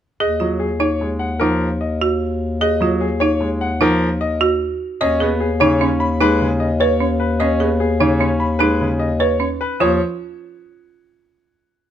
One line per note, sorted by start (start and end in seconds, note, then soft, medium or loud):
0.20 4.89 D#2 medium
0.20 0.47 G#4 medium
0.20 0.47 D#5 medium
0.40 0.67 F#3 medium
0.40 0.67 F4 medium
0.60 0.87 G#4 medium
0.80 1.07 D#4 medium
0.80 1.07 C#5 medium
1.01 1.27 G#3 medium
1.19 1.47 F#5 medium
1.40 1.67 F3 medium
1.40 1.67 D#4 medium
1.40 1.67 A#4 medium
1.81 2.07 D#5 medium
2.01 2.27 F#4 medium
2.61 2.87 G#4 medium
2.61 2.87 D#5 medium
2.81 3.07 F#3 medium
2.81 3.07 F4 medium
3.01 3.27 G#4 medium
3.20 3.47 D#4 medium
3.20 3.47 C#5 medium
3.41 3.67 G#3 medium
3.61 3.87 F#5 medium
3.81 4.07 F3 medium
3.81 4.07 D#4 medium
3.81 4.07 A#4 medium
4.21 4.47 D#5 medium
4.41 4.67 F#4 medium
5.01 9.69 D#2 medium
5.01 5.27 C#4 medium
5.01 5.27 C#5 medium
5.01 5.27 D#5 medium
5.20 5.47 B3 medium
5.20 5.47 G#4 medium
5.40 5.67 G#4 medium
5.60 5.87 C#3 medium
5.60 5.87 D#4 medium
5.60 5.87 C#5 medium
5.81 6.07 C#4 medium
6.00 6.27 B5 medium
6.21 6.47 G#3 medium
6.21 6.47 D#4 medium
6.21 6.47 B4 medium
6.41 6.67 C#3 medium
6.60 6.87 D#5 medium
6.80 7.07 B4 medium
6.80 7.07 C#5 medium
7.00 7.27 C#4 medium
7.20 7.47 B4 medium
7.40 7.67 C#4 medium
7.40 7.67 C#5 medium
7.40 7.67 D#5 medium
7.60 7.87 B3 medium
7.60 7.87 G#4 medium
7.80 8.07 G#4 medium
8.00 8.27 C#3 medium
8.00 8.27 D#4 medium
8.00 8.27 C#5 medium
8.20 8.47 C#4 medium
8.40 8.67 B5 medium
8.59 8.87 G#3 medium
8.59 8.87 D#4 medium
8.59 8.86 B4 medium
8.81 9.07 C#3 medium
8.99 9.27 D#5 medium
9.20 9.47 B4 medium
9.20 9.47 C#5 medium
9.40 9.67 C#4 medium
9.61 9.87 B4 medium
9.80 9.99 D#2 medium
9.80 9.99 F3 medium
9.80 9.99 F4 medium
9.80 10.00 C#5 medium